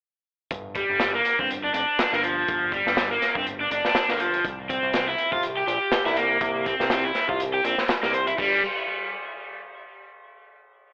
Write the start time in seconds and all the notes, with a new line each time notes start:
0.51 G1, kick, closed hi-hat
0.75 G3, kick, closed hi-hat
0.90 G1
1.00 snare, closed hi-hat
1.14 A#3
1.25 closed hi-hat
1.39 G1 C4, kick
1.51 closed hi-hat
1.64 D4
1.74 F1 D4, closed hi-hat
1.99 snare, closed hi-hat
2.12 G1 A#3, snare
2.24 F3, closed hi-hat
2.48 G1, kick, closed hi-hat
2.72 G3, kick, closed hi-hat
2.86 G1, snare
2.97 snare, closed hi-hat
3.11 A#3
3.22 snare, closed hi-hat
3.35 G1 C4, kick
3.47 closed hi-hat
3.60 D4
3.71 F1 D4, closed hi-hat
3.85 snare
3.95 snare, closed hi-hat
4.09 G1 A#3, snare
4.20 F3, closed hi-hat
4.34 closed hi-hat
4.45 C2, kick, closed hi-hat
4.69 C4, kick, closed hi-hat
4.83 C2
4.93 snare, closed hi-hat
5.08 E4
5.18 closed hi-hat
5.32 C2 F4, kick
5.43 closed hi-hat
5.57 G4
5.67 A#1 G4, closed hi-hat
5.92 snare, closed hi-hat
6.05 C2 E4, snare
6.17 A#3, closed hi-hat
6.41 C2, kick, closed hi-hat
6.66 C4, kick, closed hi-hat
6.80 C2, snare
6.90 snare, closed hi-hat
7.04 E4
7.15 snare, closed hi-hat
7.29 C2 F4, kick
7.40 closed hi-hat
7.54 G4
7.64 A#1 C4, closed hi-hat
7.78 snare
7.88 snare, closed hi-hat
8.03 C2 A#3, snare
8.14 C5, closed hi-hat
8.27 E4, closed hi-hat
8.38 G1 G3, kick, crash